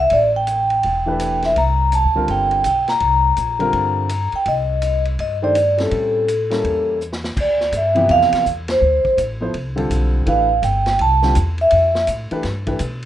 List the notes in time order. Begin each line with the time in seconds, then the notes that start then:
0.00 E5
0.10 A1 D5, ride
0.36 G5
0.47 hi-hat pedal, ride
0.70 ride
0.83 E1, ride
1.06 E3 A3 D4 G4 B4
1.20 hi-hat pedal, ride
1.42 E5, snare, ride
1.56 C2 A#5, ride
1.92 A5, hi-hat pedal, ride
2.04 D2
2.16 C#2 D3 G3 C4 F4 A#4
2.28 G1 G5, ride
2.51 ride
2.64 B1 G5, hi-hat pedal, ride
2.88 A#5, snare, ride
3.00 C2, ride
3.37 A#1, hi-hat pedal, ride
3.59 D3 G3 C4 F4 A#4, ride
3.73 G2, ride
4.09 hi-hat pedal, ride
4.32 G5, muted upright bass stroke, ride
4.46 C2 D#5, ride
4.82 hi-hat pedal, ride
5.05 ride
5.19 G2 D#5, ride
5.42 D#3 A3 D4 G4 C5 D5
5.55 hi-hat pedal, ride
5.78 G3 C4 C#4 E4 A4, snare, ride
5.91 A2, ride
6.28 hi-hat pedal, ride
6.50 G3 A#3 C#4 E4 A4, snare, ride
6.64 E2, ride
7.01 hi-hat pedal
7.13 snare
7.24 snare
7.36 D2, kick, crash
7.41 D5
7.61 snare
7.72 G2, hi-hat pedal, ride
7.77 E5
7.95 C3 E3 F3 B3 G4, ride
8.09 F2 F5, ride
8.22 snare
8.32 muted upright bass stroke, snare, ride
8.46 E2, hi-hat pedal
8.68 C5, snare, ride
8.81 D2
9.05 muted upright bass stroke, kick
9.17 A1, hi-hat pedal, ride
9.41 F3 B3 E4 A4 C5
9.54 C2, ride
9.76 D3 G3 C4 F4 A4, ride
9.90 B1, hi-hat pedal, ride
10.26 A1 E3 A3 D4 G4 B4 F5, ride
10.62 G1 G5, hi-hat pedal, ride
10.86 snare, ride
10.99 C2 A5, ride
11.22 D3 G3 C4 F4 G4, snare
11.35 E2, hi-hat pedal, ride
11.58 E5, ride
11.71 F2, ride
11.95 snare
12.07 A2, hi-hat pedal, ride
12.31 E3 A3 D4 G4 B4, muted upright bass stroke, ride
12.43 G2, snare, ride
12.67 E3 A3 D4 G4 B4, kick, ride
12.79 B2, hi-hat pedal, ride